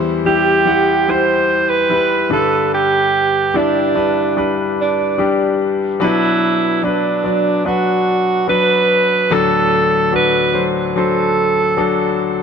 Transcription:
Already playing: E2 E3 G3 E4 C5
0.25 G3 E4 G4
0.66 G3 E4 F#5
1.08 G3 E4 C5
1.70 B4
1.90 G3 E4 B4
2.30 G2 D3 G3 D4 A4 B4
2.74 G4
3.54 G3 D4 E4
3.95 G3 D4 B4
4.37 G3 D4 B4
4.81 D4
5.18 G3 D4 G4
6.00 B2 F#3 D4 E4 B4
6.83 F#3 D4 B4
7.24 F#3 D4 D5
7.65 F#3 D4 F#4 B4
8.48 F#3 D4 B4
9.31 D2 A2 F#3 D4 A4
10.12 F#3 D4 F#4 B4
10.53 F#3 D4 C5
10.96 F#3 D4 A4 C5
11.77 F#3 D4 A4

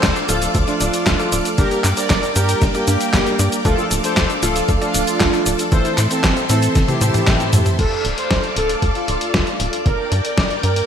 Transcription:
Already playing: A4 C5 D5 F5 D6
0.03 D2 D5, kick, snare, clap, closed hi-hat, cabasa
0.16 D4, closed hi-hat, cabasa
0.29 D1 F3 A3 D4 F4 A4, closed hi-hat, cabasa
0.42 closed hi-hat, cabasa
0.55 D2 A4, kick, closed hi-hat, cabasa
0.68 F3 A3 D4 F4 A4 D5, closed hi-hat, cabasa
0.81 D1 D4, closed hi-hat, cabasa
0.94 closed hi-hat, cabasa
1.07 D2 F3 A3 D4 F4 A4, kick, snare, clap, closed hi-hat, cabasa
1.19 A4, closed hi-hat, cabasa
1.32 D1 D5, closed hi-hat, cabasa
1.45 closed hi-hat, cabasa
1.58 G1 G3 A#3 D4 G4 A#4 D5 G5, kick, closed hi-hat, cabasa
1.71 G4, closed hi-hat, cabasa
1.84 G2 A#4, clap, closed hi-hat, cabasa
1.97 G3 A#3 D4 A#4 C5 D5, closed hi-hat, cabasa
2.10 G1 D5, kick, snare, clap, closed hi-hat, cabasa
2.23 D4, closed hi-hat, cabasa
2.36 G2 G3 A#3 D4 G4 A#4, closed hi-hat, cabasa
2.49 closed hi-hat, cabasa
2.62 G1 A#4, kick, snare, closed hi-hat, cabasa
2.75 G3 A#3 D4 G4 A#4 D5, closed hi-hat, cabasa
2.88 G2 D4, closed hi-hat, cabasa
3.01 closed hi-hat, cabasa
3.13 G1 G3 A#3 D4 G4 A#4, kick, snare, clap, closed hi-hat, cabasa
3.26 A#4, closed hi-hat, cabasa
3.39 G2 D5, closed hi-hat, cabasa
3.52 closed hi-hat, cabasa
3.65 D2 F3 A3 D4 F4 A4 D5 F5, kick, closed hi-hat, cabasa
3.78 F4, cabasa
3.91 D1 A4, closed hi-hat, cabasa
4.04 F3 A3 D4 A4 C5, closed hi-hat, cabasa
4.17 D2 D5, kick, snare, clap, closed hi-hat, cabasa
4.30 D4, closed hi-hat, cabasa
4.43 D1 F3 A3 D4 F4 A4, closed hi-hat, cabasa
4.56 closed hi-hat, cabasa
4.69 D2 A4, kick, closed hi-hat, cabasa
4.81 F3 A3 D4 F4 A4 D5, closed hi-hat, cabasa
4.94 D1 D4, closed hi-hat, cabasa
5.07 closed hi-hat, cabasa
5.20 D2 F3 A3 D4 F4 A4, kick, snare, clap, closed hi-hat, cabasa
5.33 A4, closed hi-hat, cabasa
5.46 D1 D5, closed hi-hat, cabasa
5.59 closed hi-hat, cabasa
5.72 A1 E3 A3 C4 A4 C5 E5 C6, kick, closed hi-hat, cabasa
5.85 E4, closed hi-hat, cabasa
5.98 A2 A4, clap, closed hi-hat, cabasa
6.11 E3 A3 C4 A4 C5, closed hi-hat, cabasa
6.24 A1 C5, kick, snare, clap, closed hi-hat, cabasa
6.37 C4, closed hi-hat, cabasa
6.50 A2 E3 A3 C4 E4 A4, closed hi-hat, cabasa
6.62 closed hi-hat, cabasa
6.75 A1 A4, kick, snare, closed hi-hat, high tom, cabasa
6.88 E3 A3 C4 E4 G4 A4 C5, closed hi-hat, high tom, cabasa
7.01 A2 C5, closed hi-hat, cabasa
7.14 closed hi-hat, mid tom, cabasa
7.27 A1 E3 A3 C4 A4, kick, snare, clap, closed hi-hat, mid tom, cabasa
7.40 E5, closed hi-hat, cabasa
7.53 A2 C5, closed hi-hat, mid tom, cabasa
7.66 closed hi-hat, mid tom, cabasa
7.79 D2 A4 D5 F5 D6, kick, closed hi-hat, crash
8.05 D1, closed hi-hat
8.18 C5, closed hi-hat
8.31 D2, kick, snare, closed hi-hat
8.44 closed hi-hat
8.56 D1 A4, closed hi-hat
8.69 closed hi-hat
8.82 D2, kick, closed hi-hat
8.95 F4, closed hi-hat
9.08 D1, closed hi-hat
9.21 closed hi-hat
9.34 D2, kick, snare, closed hi-hat
9.47 closed hi-hat
9.60 D1, closed hi-hat
9.73 closed hi-hat
9.86 G1 A#4 G5 D6, kick, closed hi-hat
10.12 G2, closed hi-hat
10.25 D5, closed hi-hat
10.38 G1, kick, snare, closed hi-hat
10.50 closed hi-hat
10.63 G2 A#4, closed hi-hat
10.76 closed hi-hat

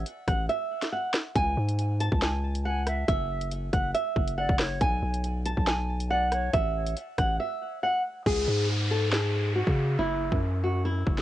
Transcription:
0.06 closed hi-hat
0.28 A1 F#5, kick, cross-stick, closed hi-hat
0.49 E5, closed hi-hat
0.82 snare, closed hi-hat
0.92 F#5
1.14 cross-stick, snare, closed hi-hat
1.35 C#2 G#5, kick, closed hi-hat
1.57 G#2
1.69 closed hi-hat
1.79 closed hi-hat
2.00 A5, closed hi-hat
2.12 C#2, kick
2.22 G#5, snare, closed hi-hat
2.55 closed hi-hat
2.65 F#5 G#5
2.87 E5, cross-stick, closed hi-hat
3.08 F#1 E5, kick, closed hi-hat
3.41 closed hi-hat
3.51 closed hi-hat
3.73 F#1 F#5, kick, closed hi-hat
3.94 E5, closed hi-hat
4.16 F#1, kick
4.28 closed hi-hat
4.38 D5 F#5
4.49 F#1, kick
4.59 C#5, cross-stick, snare, open hi-hat
4.81 B1 G#5, kick, closed hi-hat
5.02 B1
5.14 closed hi-hat
5.24 closed hi-hat
5.46 A5, closed hi-hat
5.57 B1, kick
5.67 G#5, snare, closed hi-hat
6.00 closed hi-hat
6.10 D5 F#5
6.32 C#5, cross-stick, closed hi-hat
6.54 A1 E5, kick, closed hi-hat
6.87 closed hi-hat
6.97 closed hi-hat
7.18 A1 F#5, kick, cross-stick, closed hi-hat
7.40 E5
7.83 F#5
8.26 C#2 G#4, kick, crash, downlifter
8.48 G#2
8.91 A4
9.12 G#4, snare
9.56 F#4
9.67 C#3, kick
9.99 F#1 E4
10.32 F#2, kick
10.64 F#4
10.85 E4
11.07 F#1, kick
11.18 snare

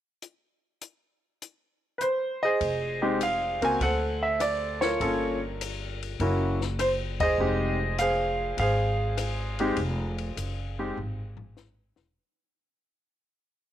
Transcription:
0.22 closed hi-hat
0.81 closed hi-hat
1.42 closed hi-hat
1.98 B4 C5, closed hi-hat
2.43 G#4 C5 D#5
2.61 F1, kick, ride
3.02 G#3 C4 D#4 G4
3.21 F5, hi-hat pedal, ride
3.61 C#2 A#3 C4 F#4 A#4 G#5, ride
3.80 D2 A4 C5 F#5, kick, ride
4.23 E5
4.40 D5, cross-stick, hi-hat pedal, ride
4.81 F4 A#4 C#5, snare, ride
5.00 G1 A#3 C#4 F4 A4, kick, ride
5.61 hi-hat pedal, ride
6.03 ride
6.20 F#1 A#3 C#4 E4 F#4, kick, ride
6.61 snare
6.79 C5, cross-stick, hi-hat pedal, ride
7.20 G#4 C5 D#5, kick, ride
7.38 F1 G#3 C4 D#4 G4
7.98 G#4 C5 F5, hi-hat pedal, ride
8.57 G#1 G#4 F5, kick, ride
8.62 C5
9.17 cross-stick, hi-hat pedal, ride
9.59 G#3 C4 D#4 G4, ride
9.76 F1, kick, ride
10.18 ride
10.37 F#1, hi-hat pedal, ride
10.79 G#3 C4 D#4 G4
10.97 G#1, floor tom
11.37 floor tom
11.57 snare, hi-hat pedal
11.96 E1, snare

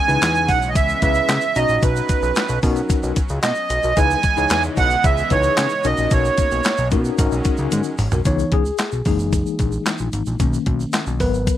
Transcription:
Already playing: C#3 E3 G#3 B3 C#4 G#5
0.08 C#2 D#4 E4 G#4 B4, shaker
0.22 E2, snare, clap, closed hi-hat, shaker
0.35 shaker
0.48 B1 F#5, kick, open hi-hat, shaker
0.62 shaker
0.69 D#5
0.75 C#2 E5, kick, closed hi-hat, shaker
0.89 shaker
1.02 C#2 C#4 E4 G#4 B4 E5, kick, closed hi-hat, shaker
1.14 shaker
1.29 C#3, snare, clap, closed hi-hat, shaker
1.41 shaker
1.55 B1 F#3 C#4 D#4 F#4 D#5 A#5, closed hi-hat, shaker
1.69 A#1, shaker
1.82 B1 B4, kick, closed hi-hat, shaker
1.96 shaker
2.09 kick, closed hi-hat, shaker
2.23 B1, shaker
2.35 snare, clap, closed hi-hat, shaker
2.49 B1, shaker
2.63 B2 C#4 D#4 F#4 A#4, kick, open hi-hat, shaker
2.76 shaker
2.90 kick, closed hi-hat, shaker
3.03 B1, shaker
3.16 kick, closed hi-hat, shaker
3.29 C#2, shaker
3.43 B2 D#5, snare, clap, closed hi-hat, shaker
3.55 shaker
3.70 B1, closed hi-hat, shaker
3.83 B1 F#4 A#4, shaker
3.97 C#2 C#3 E3 G#3 B3 D#4 E4 G#4 B4 D#5 G#5, kick, closed hi-hat, shaker
4.10 shaker
4.23 kick, closed hi-hat, shaker
4.37 C#2 D#4 E4 G#4 C#5, shaker
4.50 E2 G#5, snare, clap, closed hi-hat, shaker
4.63 shaker
4.77 B1 F#5, kick, open hi-hat, shaker
4.90 shaker
5.04 C#2 E5, kick, closed hi-hat, shaker
5.17 shaker
5.30 C#2 D#4 E4 G#4 B4 C#5, kick, closed hi-hat, shaker
5.43 shaker
5.57 C#3, snare, clap, closed hi-hat, shaker
5.69 shaker
5.84 B1 A#3 C#4 D#4 F#4 A#4 D#5, closed hi-hat, shaker
5.97 A#1, shaker
6.11 B1 C#5, kick, closed hi-hat, shaker
6.25 shaker
6.38 kick, closed hi-hat, shaker
6.51 B1, shaker
6.64 snare, clap, closed hi-hat, shaker
6.77 B1, shaker
6.91 B2 C#4 D#4 F#4 A#4, kick, closed hi-hat, shaker
7.05 shaker
7.18 G#1 F#3 G#3 C#4 D#4 F#4 A#4, kick, closed hi-hat, shaker
7.32 B1, shaker
7.45 kick, closed hi-hat, shaker
7.57 C#2, shaker
7.72 G#2, closed hi-hat, high tom, shaker
7.83 shaker
7.98 G#1, mid tom, open hi-hat, shaker
8.11 B1 F#4 A#4, floor tom, shaker
8.25 C#2 E3 B3 D#4 C#5, kick, closed hi-hat, shaker
8.39 shaker
8.52 C#2 G#4, kick, closed hi-hat
8.65 shaker
8.78 snare, clap, closed hi-hat, shaker
8.92 B1, shaker
9.05 F#1 E3 G#3 A#3 D#4 G#4, kick, open hi-hat, shaker
9.19 shaker
9.33 kick, closed hi-hat, shaker
9.46 shaker
9.59 A#1, kick, closed hi-hat, shaker
9.72 shaker
9.86 snare, clap, closed hi-hat, shaker
9.98 A#1, shaker
10.13 G#1, closed hi-hat, shaker
10.26 A#1, shaker
10.40 B1 D#3 A#3 C#4, kick, closed hi-hat, shaker
10.54 shaker
10.66 B1, kick, closed hi-hat
10.80 shaker
10.93 snare, clap, closed hi-hat, shaker
11.06 B1, shaker
11.20 G#1 F#3 B3 A#4 B4, kick, open hi-hat, shaker
11.34 shaker
11.47 kick, closed hi-hat, shaker

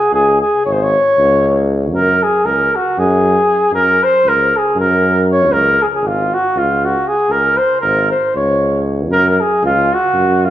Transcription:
Already playing: G#4
0.12 C#2 G#4
0.41 G#4
0.65 G#1 C#5
0.73 C5
0.83 C#5
1.18 C#2
1.92 F#2 A#4
2.23 G#4
2.44 C#2 A#4
2.76 F#4
2.98 F#2 G#4
3.72 F#2 A#4
4.04 C5
4.24 C#2
4.28 A#4
4.57 G#4
4.76 F#2
4.80 A#4
5.32 C#5
5.49 C#2 A#4
5.82 G#4
5.95 G#4
6.01 G#1
6.07 F4
6.34 F#4
6.55 C#2 F4
6.85 F#4
7.08 G#4
7.29 C#2 A#4
7.57 C5
7.81 G#1 A#4
8.11 C5
8.35 C#2 C#5
9.09 F#2 A#4
9.29 A#4
9.41 G#4
9.63 C#2 F4
9.94 F#4
10.14 F#2
10.45 F4

